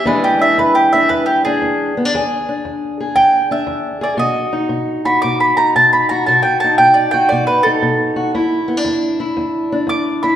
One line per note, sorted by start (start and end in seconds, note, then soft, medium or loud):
0.05 0.54 E2 medium
0.05 2.10 E3 medium
0.05 2.11 G#3 medium
0.05 0.39 D4 medium
0.05 2.11 G#4 medium
0.05 0.23 B4 medium
0.24 0.40 G4 medium
0.39 0.94 D4 medium
0.39 0.57 E5 loud
0.58 1.06 E2 medium
0.58 0.75 B4 medium
0.75 0.91 G4 medium
0.93 1.44 D4 medium
0.93 1.09 E5 medium
1.09 1.58 E2 medium
1.09 1.26 B4 medium
1.26 1.43 G4 medium
1.45 1.96 D4 medium
1.45 1.94 G#4 medium
1.62 2.09 E2 medium
1.97 2.05 B3 medium
2.05 2.13 D4 medium
2.15 2.62 E2 medium
2.15 2.99 G#4 medium
2.49 3.50 D4 medium
2.65 3.13 E2 medium
3.00 4.00 G#4 medium
3.15 3.64 E2 medium
3.15 3.49 G5 loud
3.51 4.18 D4 medium
3.51 4.01 E5 medium
3.67 4.16 E2 medium
4.01 4.17 G#4 medium
4.01 4.19 D5 medium
4.17 4.67 B2 medium
4.17 5.05 F#4 medium
4.17 4.53 D#5 loud
4.53 5.56 D#4 medium
4.69 5.19 B2 medium
5.05 6.09 F#4 medium
5.05 5.21 B5 medium
5.22 5.72 B2 medium
5.22 5.39 D6 loud
5.40 5.56 B5 medium
5.57 6.25 D#4 medium
5.57 5.74 A#5 medium
5.76 6.24 B2 medium
5.76 5.92 A5 medium
5.93 6.09 B5 medium
6.09 6.26 F#4 medium
6.09 6.26 A#5 medium
6.26 6.76 B2 medium
6.26 7.13 F#4 medium
6.26 6.42 A5 medium
6.43 6.60 G5 medium
6.60 6.78 A5 loud
6.64 7.65 D#4 medium
6.78 7.27 B2 medium
6.78 6.95 G5 loud
6.94 7.12 D5 medium
7.11 8.15 F#4 medium
7.11 7.29 G5 loud
7.29 7.80 B2 medium
7.29 7.46 D5 medium
7.47 7.64 B4 medium
7.63 8.33 D#4 medium
7.63 8.31 A4 medium
7.82 8.31 B2 medium
8.16 8.32 F#4 medium
8.34 8.83 E2 medium
8.34 9.19 E4 medium
8.68 8.77 B3 medium
8.77 9.71 D4 medium
8.85 9.34 E2 medium
9.20 10.23 E4 medium
9.37 9.86 E2 medium
9.72 10.36 D4 medium
9.87 10.36 E2 medium
9.87 10.22 D6 loud
10.23 10.36 E4 medium
10.23 10.36 B5 medium